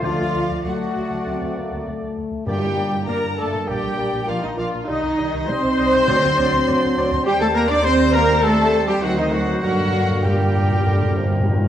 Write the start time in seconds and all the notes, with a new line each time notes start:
0.02 D2 D3 F3 A3 D4 F4 D5 F5
0.20 D2
0.35 D2
0.50 D2
0.64 D2 F#3 A3 F#4 D5 F#5
0.80 D2
0.95 D2
1.11 D2
1.26 D2 C4
1.41 D2
1.56 D2 A#3
1.71 D2
1.87 D2 A3
2.02 D2
2.16 D2
2.31 D2
2.46 G2 G3 A#3 D4 G4 D5 G5
2.62 G2
2.76 G2 A#3 D5
2.92 G2
3.07 G2 A#3 A#4 D5 A#5
3.23 G2
3.38 G2 A3 A#3 A4 D5 A5
3.54 G2
3.67 A#1 G3 A#3 G4 D5 G5
3.84 A#1
3.97 A#1 A#3 D5
4.12 A#1
4.27 A#1 F3 A#3 F4 D5 F5
4.43 A#1 D#3 D#4 D#5
4.58 A#1 F3 A#3 F4 D5 F5
4.73 A#1
4.87 C2 D#3 G3 D#4 D#5
5.03 C2
5.18 C2 G3 D#5
5.33 C2
5.48 C2 G3 C4 C5 D#5 C6
5.63 C2
5.78 C2 G3 D#5
5.93 C2
6.08 D2 D3 F#3 D4 D5
6.24 D2
6.37 D2 F#3 D5
6.53 D2
6.68 D2 F#3 D5
6.83 D2
6.97 D2 F#3 D5
7.12 D2
7.25 D#2 G3 C4 G4 C5 G5
7.40 A3 A4 A5
7.54 A#3 A#4 A#5
7.69 D4 D5 D6
7.83 G3 C4 C5 C6
8.13 A#3 A#4 A#5
8.42 G3 A3 A4 C5 A5
8.87 G3 G4 G5
9.01 D2 D#3 F#3 F#4 C5 F#5
9.17 D#3 D#4 D#5
9.32 F#3 F#4 F#5
9.62 G2 D3 F#3 A#3 F#4 A#4 F#5
9.72 G2
9.79 G2
9.87 G2
9.95 G2
10.03 G2
10.10 G2
10.18 G2
10.25 G2 A#2 G3 G4 A#4 G5
10.33 G2
10.40 G2
10.48 G2
10.56 G2
10.63 G2
10.71 G2
10.79 G2
10.87 G2 D3
10.95 G2
11.03 G2
11.11 G2
11.17 G2 C3
11.25 G2
11.32 G2
11.40 G2
11.47 G2 A#2
11.56 G2
11.64 G2